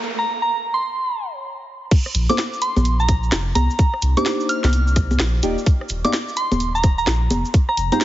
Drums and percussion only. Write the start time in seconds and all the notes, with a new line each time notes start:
1.91 kick, closed hi-hat, crash, cabasa
2.06 cross-stick
2.15 closed hi-hat, cabasa
2.30 closed hi-hat, high conga, cabasa
2.38 snare, closed hi-hat, cabasa
2.54 cabasa
2.62 closed hi-hat, cabasa
2.76 closed hi-hat, high conga, cabasa
2.85 closed hi-hat, cabasa
3.00 cabasa
3.09 kick, cross-stick, closed hi-hat, cabasa
3.23 cabasa
3.32 snare, closed hi-hat, cabasa
3.55 closed hi-hat, high conga, cabasa
3.70 cabasa
3.79 kick, closed hi-hat, cabasa
3.94 cross-stick
4.02 closed hi-hat, cabasa
4.17 closed hi-hat, high conga, cabasa
4.26 snare, closed hi-hat, cabasa
4.40 cabasa
4.49 closed hi-hat, cabasa
4.64 snare, closed hi-hat, high conga, cabasa
4.73 closed hi-hat, cabasa
4.87 cabasa
4.96 kick, cross-stick, closed hi-hat, cabasa
5.11 high conga, cabasa
5.20 snare, closed hi-hat, cabasa
5.43 closed hi-hat, cabasa
5.58 cabasa
5.66 kick, closed hi-hat, cabasa
5.81 cross-stick
5.89 closed hi-hat, cabasa
6.05 closed hi-hat, high conga, cabasa
6.13 snare, closed hi-hat, cabasa
6.29 cabasa
6.37 closed hi-hat, cabasa
6.52 closed hi-hat, high conga, cabasa
6.60 closed hi-hat, cabasa
6.75 cabasa
6.84 kick, cross-stick, closed hi-hat, cabasa
6.98 cabasa
7.07 snare, closed hi-hat, cabasa
7.31 closed hi-hat, high conga, cabasa
7.45 cabasa
7.54 kick, closed hi-hat, cabasa
7.69 cross-stick
7.77 closed hi-hat, cabasa
7.92 closed hi-hat, high conga, cabasa
8.01 snare, closed hi-hat